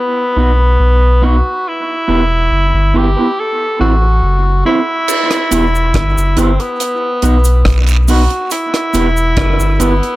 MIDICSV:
0, 0, Header, 1, 6, 480
1, 0, Start_track
1, 0, Key_signature, 1, "minor"
1, 0, Tempo, 857143
1, 928, Time_signature, 4, 2, 24, 8
1, 5690, End_track
2, 0, Start_track
2, 0, Title_t, "Clean electric guitar"
2, 0, Program_c, 0, 27
2, 205, Note_on_c, 0, 59, 84
2, 209, Note_on_c, 0, 63, 82
2, 211, Note_on_c, 0, 66, 91
2, 214, Note_on_c, 0, 71, 89
2, 273, Note_off_c, 0, 59, 0
2, 275, Note_off_c, 0, 63, 0
2, 276, Note_off_c, 0, 66, 0
2, 278, Note_off_c, 0, 71, 0
2, 683, Note_on_c, 0, 59, 90
2, 686, Note_on_c, 0, 63, 83
2, 689, Note_on_c, 0, 66, 89
2, 691, Note_on_c, 0, 71, 92
2, 752, Note_off_c, 0, 59, 0
2, 754, Note_off_c, 0, 63, 0
2, 755, Note_off_c, 0, 66, 0
2, 756, Note_off_c, 0, 71, 0
2, 1163, Note_on_c, 0, 59, 76
2, 1166, Note_on_c, 0, 64, 84
2, 1170, Note_on_c, 0, 67, 79
2, 1170, Note_on_c, 0, 71, 85
2, 1232, Note_off_c, 0, 59, 0
2, 1234, Note_off_c, 0, 64, 0
2, 1236, Note_off_c, 0, 67, 0
2, 1236, Note_off_c, 0, 71, 0
2, 1646, Note_on_c, 0, 59, 73
2, 1650, Note_on_c, 0, 64, 77
2, 1654, Note_on_c, 0, 67, 80
2, 1656, Note_on_c, 0, 71, 75
2, 1714, Note_off_c, 0, 59, 0
2, 1716, Note_off_c, 0, 64, 0
2, 1718, Note_off_c, 0, 67, 0
2, 1719, Note_off_c, 0, 71, 0
2, 1773, Note_on_c, 0, 71, 58
2, 1777, Note_on_c, 0, 67, 61
2, 1781, Note_on_c, 0, 59, 55
2, 1781, Note_on_c, 0, 64, 52
2, 1821, Note_off_c, 0, 71, 0
2, 1824, Note_off_c, 0, 67, 0
2, 1826, Note_off_c, 0, 59, 0
2, 1826, Note_off_c, 0, 64, 0
2, 2125, Note_on_c, 0, 60, 71
2, 2129, Note_on_c, 0, 64, 75
2, 2133, Note_on_c, 0, 69, 75
2, 2136, Note_on_c, 0, 72, 75
2, 2193, Note_off_c, 0, 60, 0
2, 2195, Note_off_c, 0, 64, 0
2, 2197, Note_off_c, 0, 69, 0
2, 2199, Note_off_c, 0, 72, 0
2, 2606, Note_on_c, 0, 60, 72
2, 2610, Note_on_c, 0, 64, 76
2, 2612, Note_on_c, 0, 69, 70
2, 2616, Note_on_c, 0, 72, 82
2, 2674, Note_off_c, 0, 60, 0
2, 2676, Note_off_c, 0, 64, 0
2, 2677, Note_off_c, 0, 69, 0
2, 2679, Note_off_c, 0, 72, 0
2, 3086, Note_on_c, 0, 59, 79
2, 3091, Note_on_c, 0, 64, 89
2, 3094, Note_on_c, 0, 67, 86
2, 3098, Note_on_c, 0, 71, 95
2, 3153, Note_off_c, 0, 59, 0
2, 3156, Note_off_c, 0, 64, 0
2, 3158, Note_off_c, 0, 67, 0
2, 3159, Note_off_c, 0, 71, 0
2, 3564, Note_on_c, 0, 59, 78
2, 3568, Note_on_c, 0, 64, 82
2, 3569, Note_on_c, 0, 67, 85
2, 3573, Note_on_c, 0, 71, 92
2, 3632, Note_off_c, 0, 59, 0
2, 3635, Note_off_c, 0, 64, 0
2, 3635, Note_off_c, 0, 67, 0
2, 3637, Note_off_c, 0, 71, 0
2, 4045, Note_on_c, 0, 59, 77
2, 4049, Note_on_c, 0, 63, 72
2, 4050, Note_on_c, 0, 66, 87
2, 4054, Note_on_c, 0, 71, 85
2, 4113, Note_off_c, 0, 59, 0
2, 4115, Note_off_c, 0, 63, 0
2, 4115, Note_off_c, 0, 66, 0
2, 4117, Note_off_c, 0, 71, 0
2, 4525, Note_on_c, 0, 59, 76
2, 4528, Note_on_c, 0, 63, 88
2, 4531, Note_on_c, 0, 66, 84
2, 4535, Note_on_c, 0, 71, 96
2, 4593, Note_off_c, 0, 59, 0
2, 4594, Note_off_c, 0, 63, 0
2, 4596, Note_off_c, 0, 66, 0
2, 4597, Note_off_c, 0, 71, 0
2, 5003, Note_on_c, 0, 59, 81
2, 5008, Note_on_c, 0, 64, 79
2, 5010, Note_on_c, 0, 67, 86
2, 5014, Note_on_c, 0, 71, 86
2, 5071, Note_off_c, 0, 59, 0
2, 5074, Note_off_c, 0, 64, 0
2, 5075, Note_off_c, 0, 67, 0
2, 5077, Note_off_c, 0, 71, 0
2, 5486, Note_on_c, 0, 59, 81
2, 5488, Note_on_c, 0, 64, 84
2, 5489, Note_on_c, 0, 67, 83
2, 5492, Note_on_c, 0, 71, 80
2, 5552, Note_off_c, 0, 59, 0
2, 5554, Note_off_c, 0, 64, 0
2, 5554, Note_off_c, 0, 67, 0
2, 5556, Note_off_c, 0, 71, 0
2, 5690, End_track
3, 0, Start_track
3, 0, Title_t, "Tenor saxophone"
3, 0, Program_c, 1, 66
3, 0, Note_on_c, 1, 59, 93
3, 698, Note_on_c, 1, 66, 100
3, 707, Note_off_c, 1, 59, 0
3, 942, Note_on_c, 1, 64, 97
3, 950, Note_off_c, 1, 66, 0
3, 1663, Note_on_c, 1, 67, 92
3, 1672, Note_off_c, 1, 64, 0
3, 1904, Note_on_c, 1, 69, 102
3, 1912, Note_off_c, 1, 67, 0
3, 2129, Note_off_c, 1, 69, 0
3, 2132, Note_on_c, 1, 66, 89
3, 2588, Note_off_c, 1, 66, 0
3, 2609, Note_on_c, 1, 64, 98
3, 3575, Note_on_c, 1, 60, 83
3, 3583, Note_off_c, 1, 64, 0
3, 3699, Note_on_c, 1, 59, 84
3, 3708, Note_off_c, 1, 60, 0
3, 4382, Note_off_c, 1, 59, 0
3, 4538, Note_on_c, 1, 66, 96
3, 4756, Note_off_c, 1, 66, 0
3, 4771, Note_on_c, 1, 64, 109
3, 5491, Note_on_c, 1, 59, 89
3, 5500, Note_off_c, 1, 64, 0
3, 5690, Note_off_c, 1, 59, 0
3, 5690, End_track
4, 0, Start_track
4, 0, Title_t, "Sub bass"
4, 0, Program_c, 2, 38
4, 204, Note_on_c, 2, 35, 84
4, 435, Note_off_c, 2, 35, 0
4, 446, Note_on_c, 2, 35, 91
4, 795, Note_off_c, 2, 35, 0
4, 1168, Note_on_c, 2, 28, 97
4, 1398, Note_off_c, 2, 28, 0
4, 1408, Note_on_c, 2, 30, 82
4, 1526, Note_off_c, 2, 30, 0
4, 1533, Note_on_c, 2, 31, 91
4, 1644, Note_off_c, 2, 31, 0
4, 1649, Note_on_c, 2, 31, 92
4, 1767, Note_off_c, 2, 31, 0
4, 2129, Note_on_c, 2, 33, 93
4, 2358, Note_off_c, 2, 33, 0
4, 2367, Note_on_c, 2, 30, 91
4, 2597, Note_off_c, 2, 30, 0
4, 3090, Note_on_c, 2, 28, 100
4, 3318, Note_off_c, 2, 28, 0
4, 3329, Note_on_c, 2, 31, 93
4, 3447, Note_off_c, 2, 31, 0
4, 3455, Note_on_c, 2, 30, 89
4, 3564, Note_off_c, 2, 30, 0
4, 3571, Note_on_c, 2, 31, 88
4, 3687, Note_off_c, 2, 31, 0
4, 4048, Note_on_c, 2, 35, 91
4, 4277, Note_off_c, 2, 35, 0
4, 4288, Note_on_c, 2, 35, 92
4, 4635, Note_off_c, 2, 35, 0
4, 5007, Note_on_c, 2, 28, 104
4, 5236, Note_off_c, 2, 28, 0
4, 5249, Note_on_c, 2, 30, 91
4, 5365, Note_off_c, 2, 30, 0
4, 5371, Note_on_c, 2, 31, 86
4, 5482, Note_off_c, 2, 31, 0
4, 5487, Note_on_c, 2, 31, 93
4, 5605, Note_off_c, 2, 31, 0
4, 5690, End_track
5, 0, Start_track
5, 0, Title_t, "Muted clean electric guitar strokes"
5, 328, Note_on_c, 9, 29, 40
5, 384, Note_off_c, 9, 29, 0
5, 2251, Note_on_c, 9, 29, 47
5, 2307, Note_off_c, 9, 29, 0
5, 5690, End_track
6, 0, Start_track
6, 0, Title_t, "Drums"
6, 2845, Note_on_c, 9, 49, 87
6, 2849, Note_on_c, 9, 69, 71
6, 2901, Note_off_c, 9, 49, 0
6, 2905, Note_off_c, 9, 69, 0
6, 2971, Note_on_c, 9, 37, 68
6, 2972, Note_on_c, 9, 42, 54
6, 3027, Note_off_c, 9, 37, 0
6, 3028, Note_off_c, 9, 42, 0
6, 3089, Note_on_c, 9, 42, 72
6, 3091, Note_on_c, 9, 69, 80
6, 3145, Note_off_c, 9, 42, 0
6, 3147, Note_off_c, 9, 69, 0
6, 3221, Note_on_c, 9, 69, 51
6, 3277, Note_off_c, 9, 69, 0
6, 3327, Note_on_c, 9, 42, 88
6, 3329, Note_on_c, 9, 36, 103
6, 3332, Note_on_c, 9, 37, 108
6, 3383, Note_off_c, 9, 42, 0
6, 3385, Note_off_c, 9, 36, 0
6, 3388, Note_off_c, 9, 37, 0
6, 3460, Note_on_c, 9, 69, 58
6, 3516, Note_off_c, 9, 69, 0
6, 3566, Note_on_c, 9, 42, 63
6, 3575, Note_on_c, 9, 69, 61
6, 3622, Note_off_c, 9, 42, 0
6, 3631, Note_off_c, 9, 69, 0
6, 3695, Note_on_c, 9, 42, 46
6, 3751, Note_off_c, 9, 42, 0
6, 3809, Note_on_c, 9, 42, 87
6, 3812, Note_on_c, 9, 69, 58
6, 3865, Note_off_c, 9, 42, 0
6, 3868, Note_off_c, 9, 69, 0
6, 4044, Note_on_c, 9, 42, 63
6, 4057, Note_on_c, 9, 69, 53
6, 4100, Note_off_c, 9, 42, 0
6, 4113, Note_off_c, 9, 69, 0
6, 4169, Note_on_c, 9, 69, 74
6, 4175, Note_on_c, 9, 42, 50
6, 4225, Note_off_c, 9, 69, 0
6, 4231, Note_off_c, 9, 42, 0
6, 4285, Note_on_c, 9, 37, 104
6, 4287, Note_on_c, 9, 36, 101
6, 4292, Note_on_c, 9, 42, 84
6, 4292, Note_on_c, 9, 74, 73
6, 4341, Note_off_c, 9, 37, 0
6, 4343, Note_off_c, 9, 36, 0
6, 4348, Note_off_c, 9, 42, 0
6, 4348, Note_off_c, 9, 74, 0
6, 4406, Note_on_c, 9, 42, 55
6, 4413, Note_on_c, 9, 69, 57
6, 4462, Note_off_c, 9, 42, 0
6, 4469, Note_off_c, 9, 69, 0
6, 4525, Note_on_c, 9, 69, 69
6, 4526, Note_on_c, 9, 46, 86
6, 4581, Note_off_c, 9, 69, 0
6, 4582, Note_off_c, 9, 46, 0
6, 4650, Note_on_c, 9, 42, 52
6, 4706, Note_off_c, 9, 42, 0
6, 4763, Note_on_c, 9, 69, 70
6, 4767, Note_on_c, 9, 42, 93
6, 4819, Note_off_c, 9, 69, 0
6, 4823, Note_off_c, 9, 42, 0
6, 4893, Note_on_c, 9, 37, 66
6, 4894, Note_on_c, 9, 42, 54
6, 4949, Note_off_c, 9, 37, 0
6, 4950, Note_off_c, 9, 42, 0
6, 5005, Note_on_c, 9, 69, 77
6, 5009, Note_on_c, 9, 42, 70
6, 5061, Note_off_c, 9, 69, 0
6, 5065, Note_off_c, 9, 42, 0
6, 5135, Note_on_c, 9, 69, 49
6, 5191, Note_off_c, 9, 69, 0
6, 5245, Note_on_c, 9, 42, 82
6, 5248, Note_on_c, 9, 36, 113
6, 5250, Note_on_c, 9, 37, 105
6, 5301, Note_off_c, 9, 42, 0
6, 5304, Note_off_c, 9, 36, 0
6, 5306, Note_off_c, 9, 37, 0
6, 5375, Note_on_c, 9, 69, 56
6, 5431, Note_off_c, 9, 69, 0
6, 5487, Note_on_c, 9, 42, 67
6, 5494, Note_on_c, 9, 69, 66
6, 5543, Note_off_c, 9, 42, 0
6, 5550, Note_off_c, 9, 69, 0
6, 5617, Note_on_c, 9, 42, 48
6, 5673, Note_off_c, 9, 42, 0
6, 5690, End_track
0, 0, End_of_file